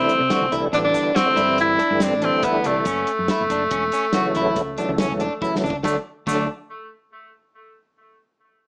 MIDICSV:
0, 0, Header, 1, 6, 480
1, 0, Start_track
1, 0, Key_signature, 2, "major"
1, 0, Tempo, 426136
1, 3227, Time_signature, 7, 2, 24, 8
1, 9770, End_track
2, 0, Start_track
2, 0, Title_t, "Clean electric guitar"
2, 0, Program_c, 0, 27
2, 0, Note_on_c, 0, 64, 84
2, 134, Note_off_c, 0, 64, 0
2, 350, Note_on_c, 0, 66, 85
2, 481, Note_off_c, 0, 66, 0
2, 585, Note_on_c, 0, 64, 73
2, 718, Note_off_c, 0, 64, 0
2, 822, Note_on_c, 0, 62, 81
2, 956, Note_off_c, 0, 62, 0
2, 1060, Note_on_c, 0, 62, 77
2, 1194, Note_off_c, 0, 62, 0
2, 1292, Note_on_c, 0, 66, 75
2, 1428, Note_off_c, 0, 66, 0
2, 1531, Note_on_c, 0, 64, 76
2, 1800, Note_off_c, 0, 64, 0
2, 2016, Note_on_c, 0, 62, 71
2, 2151, Note_off_c, 0, 62, 0
2, 2265, Note_on_c, 0, 60, 77
2, 2398, Note_off_c, 0, 60, 0
2, 2499, Note_on_c, 0, 62, 63
2, 2633, Note_off_c, 0, 62, 0
2, 2748, Note_on_c, 0, 64, 77
2, 2880, Note_off_c, 0, 64, 0
2, 2988, Note_on_c, 0, 62, 65
2, 3120, Note_off_c, 0, 62, 0
2, 3230, Note_on_c, 0, 61, 76
2, 3493, Note_off_c, 0, 61, 0
2, 3724, Note_on_c, 0, 64, 81
2, 3852, Note_off_c, 0, 64, 0
2, 3956, Note_on_c, 0, 62, 68
2, 4085, Note_off_c, 0, 62, 0
2, 4183, Note_on_c, 0, 61, 70
2, 4316, Note_off_c, 0, 61, 0
2, 4430, Note_on_c, 0, 61, 74
2, 4561, Note_off_c, 0, 61, 0
2, 4668, Note_on_c, 0, 66, 71
2, 4800, Note_off_c, 0, 66, 0
2, 4916, Note_on_c, 0, 64, 78
2, 5178, Note_off_c, 0, 64, 0
2, 5387, Note_on_c, 0, 62, 64
2, 5519, Note_off_c, 0, 62, 0
2, 5631, Note_on_c, 0, 61, 80
2, 5762, Note_off_c, 0, 61, 0
2, 5867, Note_on_c, 0, 62, 70
2, 5999, Note_off_c, 0, 62, 0
2, 6107, Note_on_c, 0, 64, 76
2, 6239, Note_off_c, 0, 64, 0
2, 6350, Note_on_c, 0, 62, 69
2, 6481, Note_off_c, 0, 62, 0
2, 6584, Note_on_c, 0, 62, 64
2, 6719, Note_off_c, 0, 62, 0
2, 7070, Note_on_c, 0, 62, 73
2, 7291, Note_off_c, 0, 62, 0
2, 9770, End_track
3, 0, Start_track
3, 0, Title_t, "Tenor saxophone"
3, 0, Program_c, 1, 66
3, 0, Note_on_c, 1, 60, 93
3, 589, Note_off_c, 1, 60, 0
3, 833, Note_on_c, 1, 62, 86
3, 886, Note_off_c, 1, 62, 0
3, 948, Note_on_c, 1, 62, 99
3, 1305, Note_on_c, 1, 60, 96
3, 1322, Note_off_c, 1, 62, 0
3, 1786, Note_off_c, 1, 60, 0
3, 1808, Note_on_c, 1, 64, 103
3, 2291, Note_on_c, 1, 62, 90
3, 2308, Note_off_c, 1, 64, 0
3, 2526, Note_on_c, 1, 60, 83
3, 2543, Note_off_c, 1, 62, 0
3, 2748, Note_on_c, 1, 59, 93
3, 2765, Note_off_c, 1, 60, 0
3, 2999, Note_on_c, 1, 57, 79
3, 3016, Note_off_c, 1, 59, 0
3, 6112, Note_off_c, 1, 57, 0
3, 6579, Note_on_c, 1, 57, 81
3, 6716, Note_off_c, 1, 57, 0
3, 7065, Note_on_c, 1, 57, 79
3, 7288, Note_off_c, 1, 57, 0
3, 9770, End_track
4, 0, Start_track
4, 0, Title_t, "Tonewheel organ"
4, 0, Program_c, 2, 16
4, 0, Note_on_c, 2, 50, 58
4, 0, Note_on_c, 2, 52, 56
4, 0, Note_on_c, 2, 55, 53
4, 0, Note_on_c, 2, 57, 68
4, 249, Note_off_c, 2, 50, 0
4, 250, Note_off_c, 2, 57, 0
4, 251, Note_off_c, 2, 52, 0
4, 251, Note_off_c, 2, 55, 0
4, 342, Note_on_c, 2, 52, 72
4, 344, Note_on_c, 2, 55, 67
4, 345, Note_on_c, 2, 50, 71
4, 351, Note_on_c, 2, 57, 86
4, 523, Note_off_c, 2, 52, 0
4, 524, Note_off_c, 2, 50, 0
4, 524, Note_off_c, 2, 55, 0
4, 527, Note_off_c, 2, 57, 0
4, 583, Note_on_c, 2, 50, 83
4, 583, Note_on_c, 2, 52, 76
4, 585, Note_on_c, 2, 57, 93
4, 588, Note_on_c, 2, 55, 77
4, 763, Note_off_c, 2, 50, 0
4, 763, Note_off_c, 2, 52, 0
4, 764, Note_off_c, 2, 57, 0
4, 766, Note_off_c, 2, 55, 0
4, 812, Note_on_c, 2, 50, 72
4, 813, Note_on_c, 2, 52, 68
4, 816, Note_on_c, 2, 55, 60
4, 818, Note_on_c, 2, 59, 79
4, 1265, Note_off_c, 2, 50, 0
4, 1266, Note_off_c, 2, 52, 0
4, 1267, Note_off_c, 2, 55, 0
4, 1268, Note_off_c, 2, 59, 0
4, 1419, Note_on_c, 2, 52, 64
4, 1421, Note_on_c, 2, 50, 75
4, 1422, Note_on_c, 2, 55, 60
4, 1423, Note_on_c, 2, 57, 81
4, 1601, Note_off_c, 2, 52, 0
4, 1602, Note_off_c, 2, 50, 0
4, 1603, Note_off_c, 2, 55, 0
4, 1603, Note_off_c, 2, 57, 0
4, 1667, Note_on_c, 2, 50, 73
4, 1670, Note_on_c, 2, 52, 65
4, 1672, Note_on_c, 2, 55, 58
4, 1672, Note_on_c, 2, 60, 80
4, 2023, Note_off_c, 2, 50, 0
4, 2025, Note_off_c, 2, 52, 0
4, 2026, Note_off_c, 2, 55, 0
4, 2026, Note_off_c, 2, 60, 0
4, 2142, Note_on_c, 2, 50, 67
4, 2145, Note_on_c, 2, 52, 61
4, 2150, Note_on_c, 2, 55, 54
4, 2151, Note_on_c, 2, 57, 65
4, 2412, Note_off_c, 2, 50, 0
4, 2414, Note_off_c, 2, 52, 0
4, 2416, Note_off_c, 2, 55, 0
4, 2417, Note_off_c, 2, 57, 0
4, 2496, Note_on_c, 2, 50, 73
4, 2502, Note_on_c, 2, 52, 61
4, 2506, Note_on_c, 2, 55, 65
4, 2507, Note_on_c, 2, 57, 82
4, 3214, Note_off_c, 2, 50, 0
4, 3217, Note_off_c, 2, 52, 0
4, 3219, Note_off_c, 2, 55, 0
4, 3220, Note_off_c, 2, 57, 0
4, 4666, Note_on_c, 2, 52, 83
4, 4668, Note_on_c, 2, 49, 98
4, 4668, Note_on_c, 2, 54, 88
4, 4673, Note_on_c, 2, 57, 106
4, 5201, Note_off_c, 2, 52, 0
4, 5202, Note_off_c, 2, 49, 0
4, 5202, Note_off_c, 2, 54, 0
4, 5204, Note_off_c, 2, 57, 0
4, 5381, Note_on_c, 2, 49, 72
4, 5383, Note_on_c, 2, 57, 86
4, 5385, Note_on_c, 2, 54, 70
4, 5388, Note_on_c, 2, 52, 72
4, 5473, Note_off_c, 2, 49, 0
4, 5474, Note_off_c, 2, 57, 0
4, 5475, Note_off_c, 2, 54, 0
4, 5476, Note_off_c, 2, 52, 0
4, 5489, Note_on_c, 2, 49, 70
4, 5493, Note_on_c, 2, 54, 65
4, 5497, Note_on_c, 2, 57, 77
4, 5501, Note_on_c, 2, 52, 75
4, 5943, Note_off_c, 2, 49, 0
4, 5945, Note_off_c, 2, 54, 0
4, 5947, Note_off_c, 2, 57, 0
4, 5949, Note_off_c, 2, 52, 0
4, 6100, Note_on_c, 2, 49, 83
4, 6101, Note_on_c, 2, 54, 73
4, 6103, Note_on_c, 2, 52, 72
4, 6103, Note_on_c, 2, 57, 83
4, 6459, Note_off_c, 2, 49, 0
4, 6460, Note_off_c, 2, 54, 0
4, 6461, Note_off_c, 2, 52, 0
4, 6461, Note_off_c, 2, 57, 0
4, 6583, Note_on_c, 2, 54, 61
4, 6585, Note_on_c, 2, 50, 64
4, 6587, Note_on_c, 2, 62, 73
4, 6588, Note_on_c, 2, 57, 58
4, 6718, Note_off_c, 2, 54, 0
4, 6719, Note_off_c, 2, 50, 0
4, 6721, Note_off_c, 2, 57, 0
4, 6721, Note_off_c, 2, 62, 0
4, 7063, Note_on_c, 2, 50, 77
4, 7065, Note_on_c, 2, 57, 68
4, 7066, Note_on_c, 2, 54, 76
4, 7067, Note_on_c, 2, 62, 89
4, 7287, Note_off_c, 2, 50, 0
4, 7288, Note_off_c, 2, 57, 0
4, 7289, Note_off_c, 2, 54, 0
4, 7289, Note_off_c, 2, 62, 0
4, 9770, End_track
5, 0, Start_track
5, 0, Title_t, "Fingered electric bass"
5, 0, Program_c, 3, 33
5, 226, Note_on_c, 3, 48, 77
5, 324, Note_off_c, 3, 48, 0
5, 469, Note_on_c, 3, 36, 80
5, 565, Note_off_c, 3, 36, 0
5, 588, Note_on_c, 3, 36, 82
5, 782, Note_off_c, 3, 36, 0
5, 817, Note_on_c, 3, 33, 83
5, 1016, Note_off_c, 3, 33, 0
5, 1546, Note_on_c, 3, 43, 97
5, 2033, Note_off_c, 3, 43, 0
5, 2148, Note_on_c, 3, 43, 84
5, 2384, Note_on_c, 3, 33, 89
5, 2401, Note_off_c, 3, 43, 0
5, 2580, Note_off_c, 3, 33, 0
5, 2997, Note_on_c, 3, 36, 91
5, 3188, Note_off_c, 3, 36, 0
5, 3216, Note_on_c, 3, 30, 87
5, 3415, Note_off_c, 3, 30, 0
5, 3592, Note_on_c, 3, 42, 73
5, 3688, Note_off_c, 3, 42, 0
5, 3835, Note_on_c, 3, 30, 73
5, 3929, Note_off_c, 3, 30, 0
5, 3939, Note_on_c, 3, 30, 84
5, 4137, Note_off_c, 3, 30, 0
5, 4184, Note_on_c, 3, 28, 83
5, 4380, Note_off_c, 3, 28, 0
5, 4906, Note_on_c, 3, 37, 80
5, 5393, Note_off_c, 3, 37, 0
5, 5505, Note_on_c, 3, 37, 81
5, 5747, Note_on_c, 3, 28, 83
5, 5763, Note_off_c, 3, 37, 0
5, 5941, Note_off_c, 3, 28, 0
5, 6353, Note_on_c, 3, 37, 89
5, 6545, Note_off_c, 3, 37, 0
5, 6578, Note_on_c, 3, 38, 76
5, 6715, Note_off_c, 3, 38, 0
5, 7062, Note_on_c, 3, 38, 79
5, 7287, Note_off_c, 3, 38, 0
5, 9770, End_track
6, 0, Start_track
6, 0, Title_t, "Drums"
6, 101, Note_on_c, 9, 42, 60
6, 214, Note_off_c, 9, 42, 0
6, 340, Note_on_c, 9, 38, 95
6, 340, Note_on_c, 9, 42, 82
6, 452, Note_off_c, 9, 38, 0
6, 452, Note_off_c, 9, 42, 0
6, 588, Note_on_c, 9, 42, 63
6, 700, Note_off_c, 9, 42, 0
6, 826, Note_on_c, 9, 42, 69
6, 938, Note_off_c, 9, 42, 0
6, 1060, Note_on_c, 9, 42, 53
6, 1062, Note_on_c, 9, 36, 65
6, 1067, Note_on_c, 9, 82, 41
6, 1173, Note_off_c, 9, 42, 0
6, 1175, Note_off_c, 9, 36, 0
6, 1179, Note_off_c, 9, 82, 0
6, 1307, Note_on_c, 9, 38, 94
6, 1307, Note_on_c, 9, 42, 71
6, 1419, Note_off_c, 9, 38, 0
6, 1419, Note_off_c, 9, 42, 0
6, 1544, Note_on_c, 9, 42, 56
6, 1656, Note_off_c, 9, 42, 0
6, 1779, Note_on_c, 9, 42, 70
6, 1892, Note_off_c, 9, 42, 0
6, 2020, Note_on_c, 9, 36, 64
6, 2023, Note_on_c, 9, 42, 55
6, 2133, Note_off_c, 9, 36, 0
6, 2136, Note_off_c, 9, 42, 0
6, 2255, Note_on_c, 9, 38, 94
6, 2255, Note_on_c, 9, 42, 78
6, 2269, Note_on_c, 9, 82, 55
6, 2368, Note_off_c, 9, 38, 0
6, 2368, Note_off_c, 9, 42, 0
6, 2382, Note_off_c, 9, 82, 0
6, 2497, Note_on_c, 9, 38, 27
6, 2497, Note_on_c, 9, 42, 56
6, 2610, Note_off_c, 9, 38, 0
6, 2610, Note_off_c, 9, 42, 0
6, 2733, Note_on_c, 9, 42, 80
6, 2739, Note_on_c, 9, 36, 101
6, 2750, Note_on_c, 9, 82, 14
6, 2845, Note_off_c, 9, 42, 0
6, 2851, Note_off_c, 9, 36, 0
6, 2863, Note_off_c, 9, 82, 0
6, 2974, Note_on_c, 9, 42, 60
6, 2982, Note_on_c, 9, 82, 17
6, 3087, Note_off_c, 9, 42, 0
6, 3095, Note_off_c, 9, 82, 0
6, 3212, Note_on_c, 9, 42, 77
6, 3219, Note_on_c, 9, 36, 98
6, 3224, Note_on_c, 9, 82, 53
6, 3325, Note_off_c, 9, 42, 0
6, 3331, Note_off_c, 9, 36, 0
6, 3337, Note_off_c, 9, 82, 0
6, 3458, Note_on_c, 9, 42, 58
6, 3570, Note_off_c, 9, 42, 0
6, 3697, Note_on_c, 9, 38, 95
6, 3697, Note_on_c, 9, 42, 75
6, 3810, Note_off_c, 9, 38, 0
6, 3810, Note_off_c, 9, 42, 0
6, 3942, Note_on_c, 9, 36, 77
6, 3942, Note_on_c, 9, 42, 66
6, 3950, Note_on_c, 9, 82, 14
6, 4055, Note_off_c, 9, 36, 0
6, 4055, Note_off_c, 9, 42, 0
6, 4063, Note_off_c, 9, 82, 0
6, 4176, Note_on_c, 9, 42, 82
6, 4183, Note_on_c, 9, 36, 104
6, 4289, Note_off_c, 9, 42, 0
6, 4296, Note_off_c, 9, 36, 0
6, 4414, Note_on_c, 9, 42, 54
6, 4434, Note_on_c, 9, 82, 40
6, 4526, Note_off_c, 9, 42, 0
6, 4547, Note_off_c, 9, 82, 0
6, 4648, Note_on_c, 9, 38, 94
6, 4648, Note_on_c, 9, 42, 81
6, 4761, Note_off_c, 9, 38, 0
6, 4761, Note_off_c, 9, 42, 0
6, 4897, Note_on_c, 9, 38, 31
6, 4897, Note_on_c, 9, 42, 53
6, 5010, Note_off_c, 9, 38, 0
6, 5010, Note_off_c, 9, 42, 0
6, 5134, Note_on_c, 9, 38, 31
6, 5134, Note_on_c, 9, 42, 67
6, 5142, Note_on_c, 9, 36, 91
6, 5162, Note_on_c, 9, 82, 15
6, 5247, Note_off_c, 9, 38, 0
6, 5247, Note_off_c, 9, 42, 0
6, 5255, Note_off_c, 9, 36, 0
6, 5274, Note_off_c, 9, 82, 0
6, 5379, Note_on_c, 9, 42, 54
6, 5402, Note_on_c, 9, 82, 16
6, 5492, Note_off_c, 9, 42, 0
6, 5515, Note_off_c, 9, 82, 0
6, 5613, Note_on_c, 9, 38, 110
6, 5613, Note_on_c, 9, 42, 68
6, 5648, Note_on_c, 9, 82, 47
6, 5726, Note_off_c, 9, 38, 0
6, 5726, Note_off_c, 9, 42, 0
6, 5760, Note_off_c, 9, 82, 0
6, 5856, Note_on_c, 9, 42, 53
6, 5968, Note_off_c, 9, 42, 0
6, 6102, Note_on_c, 9, 36, 106
6, 6128, Note_on_c, 9, 82, 17
6, 6215, Note_off_c, 9, 36, 0
6, 6240, Note_off_c, 9, 82, 0
6, 6259, Note_on_c, 9, 38, 68
6, 6369, Note_on_c, 9, 82, 17
6, 6371, Note_off_c, 9, 38, 0
6, 6423, Note_on_c, 9, 36, 89
6, 6482, Note_off_c, 9, 82, 0
6, 6536, Note_off_c, 9, 36, 0
6, 6572, Note_on_c, 9, 38, 75
6, 6580, Note_on_c, 9, 36, 95
6, 6615, Note_on_c, 9, 82, 77
6, 6684, Note_off_c, 9, 38, 0
6, 6693, Note_off_c, 9, 36, 0
6, 6728, Note_off_c, 9, 82, 0
6, 7061, Note_on_c, 9, 36, 92
6, 7061, Note_on_c, 9, 49, 72
6, 7082, Note_on_c, 9, 82, 77
6, 7173, Note_off_c, 9, 36, 0
6, 7173, Note_off_c, 9, 49, 0
6, 7195, Note_off_c, 9, 82, 0
6, 9770, End_track
0, 0, End_of_file